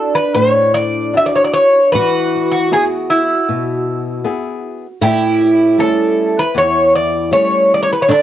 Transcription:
Already playing: D4 E4 F#4 A4
0.15 B4
0.35 A2 C#5
0.74 D5
1.14 D4 E4 F#4 E5
1.26 D5
1.36 C#5
1.44 D5
1.54 C#5
1.92 E3 F#4 B4
2.52 F#4
2.71 B3 E4 G#4
3.10 E4
3.49 B2
4.24 B3 E4 G#4
5.01 A2 E4 G4
5.78 G3 A3 C#4 A4
6.39 B4
6.55 E2 C#5
6.96 D5
7.31 G3 A3 C#4 C#5
7.74 D5
7.83 C#5
7.93 B4
8.02 C#5
8.09 D3 D4 D5

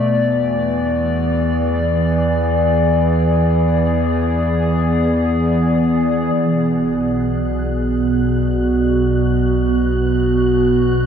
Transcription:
Already playing: B3 D5
0.01 E2
0.05 E3
0.91 G#4
6.33 B1 B2 F#6
8.04 F#4

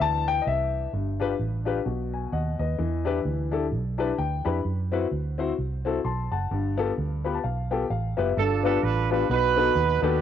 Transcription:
Already playing: E3 B3 D4
0.00 D2 A5
0.28 G5
0.42 D#5
0.47 C2 E5
0.93 G1 G2
1.20 D4 F4 G4 B4
1.39 A1
1.65 D4 F4 G4 B4
1.85 B1 B2
2.13 G#5
2.32 D#2 D#5 F#5
2.59 D#2 B4 D#5
2.78 E2 E3
3.05 D4 E4 G4 B4
3.25 D2
3.51 D4 E4 G4 A4
3.72 B1
3.98 D4 E4 G4 B4 A5
4.18 D2 G5
4.45 F2 D4 E4 G4 B4 B5
4.65 F#2
4.92 C4 E4 F#4 B4
5.11 D2
5.38 C4 E4 F#4 C5
5.58 C2
5.85 C4 E4 F#4 A4
6.04 B1 A5 C6
6.31 F#1 F#5 A5
6.51 G1 G2
6.77 B3 F4 G4 A4
6.98 D2
7.25 B3 F4 G4 B4 B5
7.34 A5
7.44 B1 F5
7.71 B3 F4 G4 A4 G5
7.90 A1 F5
8.17 F#1 B3 F4 G4 B4 E5
8.37 G1 G2 D4 F4 A4
8.63 B3 D4 F4 G4 A4 B4
8.83 A1 B4
9.10 B3 D4 F4 G4 B4
9.29 B1 B2 D#4 F#4 B4
9.56 B3 D#4 F#4 A4 B4
9.75 D#2
10.02 D#2 B3 D4 D#4 F#4 G4 A4 B4

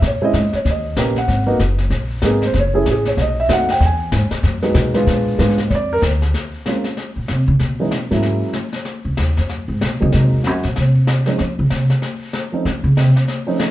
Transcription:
0.02 A#2, brush sweep, kick, snare
0.07 C#5
0.22 G#3 C4 C#4 E4 D#5
0.33 G#2, kick, snare, hi-hat pedal
0.53 C#5, muted upright bass stroke, snare
0.65 D#2, brush sweep, kick, snare
0.71 D#5
0.96 A#1 A#3 B3 C#4 G4, kick, snare, hi-hat pedal
1.16 F#5, snare
1.28 G#1, brush sweep, kick, snare
1.46 A#3 B3 D#4 F#4
1.59 F#1, kick, snare, hi-hat pedal
1.78 snare
1.90 A#1, brush sweep, kick, snare
2.22 G#1 A#3 B3 D#4 G#4, kick, snare, hi-hat pedal
2.42 C5, snare
2.53 F#1, brush sweep, kick, snare
2.59 C#5
2.74 A3 C#4 E4 G#4
2.86 A1, kick, snare, hi-hat pedal
2.91 G#4
3.05 C#5, snare
3.17 B1, brush sweep, kick, snare
3.22 D#5
3.40 E5
3.49 F#2 A3 C4 D#4 F#4, kick, snare, hi-hat pedal
3.53 F#5
3.69 G5, snare
3.80 E2, brush sweep, kick, snare
3.86 G#5
4.12 G#2, kick, snare, hi-hat pedal
4.31 muted upright bass stroke, snare
4.43 F#2, brush sweep, kick, snare
4.62 G#3 B3 D#4 F#4, snare
4.74 B2, kick, snare, hi-hat pedal
4.94 G#3 B3 D4 F4, snare
5.07 A#2, brush sweep, kick, snare
5.39 G#2 G#3 B3 D4 F4, kick, snare, hi-hat pedal
5.49 snare
5.58 snare
5.60 snare
5.70 F2 C#5, brush sweep, kick, snare
5.75 D5
5.93 A#4
6.02 D2, kick, snare, hi-hat pedal
6.22 snare
6.34 brush sweep, snare
6.66 G#3 A#3 C4 C#4 F4, snare
6.84 snare
6.97 brush sweep, snare
7.16 A#2
7.28 C3, snare
7.48 C#3
7.59 B2, brush sweep, snare
7.80 E3 G#3 B3 C#4 D#4
7.91 snare
8.11 G#2 F#3 G#3 A#3 C#4 E4, snare
8.22 brush sweep, snare
8.53 snare
8.73 snare
8.85 brush sweep, snare
9.05 C#2
9.17 D#2, snare
9.37 F2, snare
9.49 F#2, brush sweep, snare
9.68 G#2
9.81 B2, snare
10.00 C#3 F#3 G#3 A#3 C4 D#4
10.12 C3, brush sweep, snare
10.32 D#2
10.44 F#2, snare
10.63 A#2, snare
10.76 C3, brush sweep, snare
11.07 snare
11.26 F3 G#3 C4 C#4 D#4, snare
11.38 F3, brush sweep, snare
11.59 C#3
11.70 C3, snare
11.90 snare
12.02 brush sweep, snare
12.33 snare
12.52 F3 A3 C4 C#4 D#4
12.65 F3, brush sweep, snare
12.84 C#3
12.97 C3, snare
13.16 snare
13.28 brush sweep, snare
13.46 F3 A3 C4 C#4 D#4
13.60 snare

